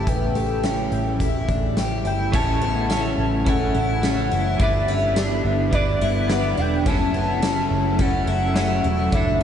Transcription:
0.00 2.29 C#3 medium
0.00 2.29 A3 medium
0.00 2.29 E4 medium
0.00 2.29 G4 medium
0.07 0.88 A1 medium
0.07 0.35 B3 medium
0.07 1.77 G5 loud
0.07 kick loud
0.07 closed hi-hat medium
0.35 0.63 A3 medium
0.35 closed hi-hat soft
0.63 1.20 C#4 medium
0.63 1.75 A5 medium
0.63 snare medium
0.63 closed hi-hat medium
0.92 1.46 A1 medium
0.92 closed hi-hat soft
1.20 1.48 E4 medium
1.20 kick medium
1.20 closed hi-hat medium
1.48 2.02 A1 medium
1.48 1.77 D4 medium
1.48 kick medium
1.48 closed hi-hat soft
1.77 2.05 G4 medium
1.77 snare loud
1.77 closed hi-hat medium
2.05 2.32 G1 medium
2.05 2.33 E4 medium
2.05 2.36 G5 loud
2.05 closed hi-hat soft
2.32 3.14 A1 loud
2.32 4.58 C#3 medium
2.32 4.57 E3 medium
2.32 2.89 A3 medium
2.32 4.57 A3 medium
2.32 2.87 C#4 medium
2.32 2.61 C#4 medium
2.32 9.43 E4 medium
2.32 2.90 E4 medium
2.32 2.90 A4 medium
2.32 2.91 C#5 medium
2.32 3.50 A5 loud
2.32 kick loud
2.32 crash loud
2.62 2.89 B3 medium
2.88 3.44 C#4 medium
2.88 3.45 C#4 medium
2.88 3.46 E4 medium
2.88 3.47 A4 medium
2.88 4.02 E5 medium
2.88 snare loud
2.88 ride medium
2.88 tambourine medium
2.93 3.48 C#5 medium
3.18 3.72 A1 medium
3.45 4.00 C#4 medium
3.45 3.75 C#4 medium
3.45 4.03 E4 medium
3.45 4.58 A4 medium
3.45 4.03 A4 medium
3.45 4.62 F#5 loud
3.45 kick medium
3.45 ride medium
3.49 4.04 C#5 medium
3.75 4.28 A1 medium
3.75 4.03 E4 medium
4.02 4.59 C#4 medium
4.02 4.31 C#4 medium
4.02 4.61 E4 medium
4.02 4.60 A4 medium
4.02 snare loud
4.02 ride medium
4.02 tambourine medium
4.06 4.61 C#5 medium
4.32 4.58 F#1 medium
4.32 4.60 E4 medium
4.57 5.41 G1 loud
4.57 6.84 D3 medium
4.57 5.72 G3 medium
4.57 6.84 G3 medium
4.57 5.70 B3 medium
4.57 6.84 B3 medium
4.57 4.88 D4 medium
4.57 5.72 E4 medium
4.57 5.73 E5 loud
4.57 kick loud
4.57 ride medium
4.62 5.73 B4 medium
4.62 5.74 D5 medium
4.88 5.16 C#4 medium
5.16 5.72 D4 medium
5.16 6.28 G4 medium
5.16 snare loud
5.16 ride medium
5.16 tambourine medium
5.45 5.98 G1 loud
5.71 6.26 B3 medium
5.71 6.01 D4 medium
5.71 6.29 E4 medium
5.71 6.29 B4 medium
5.71 6.26 D5 medium
5.71 kick loud
5.71 ride medium
5.75 6.31 D5 medium
6.01 6.55 G1 loud
6.01 6.30 E4 medium
6.28 6.85 B3 medium
6.28 6.57 B3 medium
6.28 6.87 E4 medium
6.28 6.87 B4 medium
6.28 snare loud
6.28 ride medium
6.28 tambourine medium
6.32 6.87 D5 medium
6.57 6.86 E1 medium
6.57 6.86 D4 medium
6.57 6.89 G5 loud
6.84 7.67 F#1 loud
6.84 9.10 C#3 medium
6.84 7.97 F#3 medium
6.84 9.43 F#3 medium
6.84 9.43 A3 medium
6.84 7.98 C#4 medium
6.84 7.14 C#4 medium
6.84 8.02 A5 loud
6.84 kick loud
6.84 ride medium
6.88 8.00 E4 medium
6.88 8.01 A4 medium
7.14 7.42 B3 medium
7.42 7.98 C#4 medium
7.42 snare loud
7.42 ride medium
7.42 tambourine medium
7.71 8.25 F#1 loud
7.98 8.54 F#3 medium
7.98 8.27 C#4 medium
7.98 8.55 C#4 medium
7.98 8.57 E4 medium
7.98 9.15 F#5 loud
7.98 kick loud
7.98 ride medium
8.02 8.58 A4 medium
8.27 8.81 F#1 loud
8.27 8.56 E4 medium
8.54 9.10 F#3 medium
8.54 9.12 C#4 medium
8.54 8.84 C#4 medium
8.54 9.14 E4 medium
8.54 snare loud
8.54 ride medium
8.54 tambourine medium
8.58 9.16 A4 medium
8.84 9.11 E1 medium
8.84 9.13 E4 medium
9.11 9.43 F#1 loud
9.11 9.43 D3 medium
9.11 9.43 F#3 medium
9.11 9.40 D4 medium
9.11 9.43 D4 medium
9.11 9.43 E5 loud
9.11 kick loud
9.11 high tom medium
9.15 9.43 E4 medium
9.15 9.43 A4 medium
9.27 high tom soft

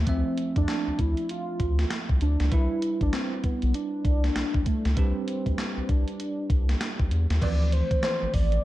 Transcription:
0.06 0.23 D2 medium
0.06 2.48 F3 medium
0.06 2.48 A3 medium
0.06 0.57 C4 loud
0.06 2.48 C4 medium
0.06 2.49 E5 medium
0.06 kick loud
0.06 closed hi-hat medium
0.38 closed hi-hat medium
0.56 0.66 F2 medium
0.56 1.02 D4 loud
0.56 kick medium
0.56 closed hi-hat soft
0.68 snare loud
0.68 clap medium
0.68 closed hi-hat medium
0.88 0.92 D2 soft
0.99 1.15 D2 loud
0.99 1.30 E4 loud
0.99 kick medium
0.99 closed hi-hat medium
1.17 closed hi-hat soft
1.29 1.87 F4 loud
1.29 closed hi-hat medium
1.60 1.85 D2 loud
1.60 kick loud
1.60 closed hi-hat medium
1.79 snare medium
1.79 closed hi-hat soft
1.91 snare loud
1.91 clap medium
1.91 closed hi-hat medium
2.09 2.19 C2 medium
2.09 kick medium
2.21 2.37 D2 medium
2.21 2.50 D4 loud
2.21 closed hi-hat medium
2.40 2.50 C#2 medium
2.40 snare medium
2.40 closed hi-hat medium
2.51 2.67 C2 loud
2.51 4.93 G3 medium
2.51 4.93 D4 medium
2.51 2.98 E4 loud
2.51 4.94 E4 medium
2.51 4.93 B4 medium
2.51 kick loud
2.51 closed hi-hat medium
2.82 closed hi-hat medium
3.01 3.11 A1 medium
3.01 3.13 D4 loud
3.01 kick medium
3.01 closed hi-hat soft
3.13 3.46 C4 medium
3.13 snare loud
3.13 clap medium
3.13 closed hi-hat medium
3.44 3.52 B1 soft
3.44 3.74 B3 medium
3.44 kick medium
3.44 closed hi-hat medium
3.62 3.73 B1 medium
3.62 closed hi-hat soft
3.74 4.62 D4 loud
3.74 closed hi-hat medium
4.05 4.30 C2 medium
4.05 kick loud
4.05 closed hi-hat medium
4.24 snare medium
4.24 closed hi-hat soft
4.36 4.43 B1 soft
4.36 snare loud
4.36 clap medium
4.36 closed hi-hat medium
4.54 4.64 B1 medium
4.54 kick medium
4.66 4.95 A3 medium
4.66 kick medium
4.66 closed hi-hat medium
4.85 4.95 C#2 medium
4.85 snare medium
4.85 closed hi-hat soft
4.96 5.12 C2 loud
4.96 7.38 G3 medium
4.96 5.91 C4 loud
4.96 7.38 D4 medium
4.96 7.39 G4 medium
4.96 7.38 B4 medium
4.96 kick loud
4.96 closed hi-hat medium
5.28 closed hi-hat medium
5.46 5.56 D2 medium
5.46 kick medium
5.46 closed hi-hat soft
5.58 snare loud
5.58 clap medium
5.58 closed hi-hat medium
5.77 5.82 C2 soft
5.89 6.04 C2 medium
5.89 7.11 D4 medium
5.89 kick medium
5.89 closed hi-hat medium
6.08 closed hi-hat soft
6.20 closed hi-hat medium
6.50 6.75 C2 medium
6.50 kick loud
6.50 closed hi-hat medium
6.69 snare medium
6.69 closed hi-hat soft
6.81 snare loud
6.81 clap medium
6.81 closed hi-hat medium
7.00 7.09 B1 medium
7.00 kick medium
7.11 7.27 E2 medium
7.11 closed hi-hat medium
7.30 7.40 D#2 medium
7.30 snare medium
7.30 closed hi-hat soft
7.41 7.82 D2 medium
7.41 8.64 E3 medium
7.41 8.64 F3 medium
7.41 8.64 A3 medium
7.41 8.64 C4 medium
7.41 7.75 D5 loud
7.41 kick loud
7.41 closed hi-hat medium
7.41 crash medium
7.41 cowbell medium
7.72 8.03 C5 medium
7.72 closed hi-hat medium
7.91 kick loud
7.91 closed hi-hat soft
8.03 8.32 C5 loud
8.03 snare loud
8.03 clap medium
8.03 closed hi-hat medium
8.03 cowbell medium
8.22 8.27 A1 medium
8.34 8.59 A1 medium
8.34 8.64 D5 loud
8.34 kick medium
8.34 open hi-hat medium
8.52 closed hi-hat soft

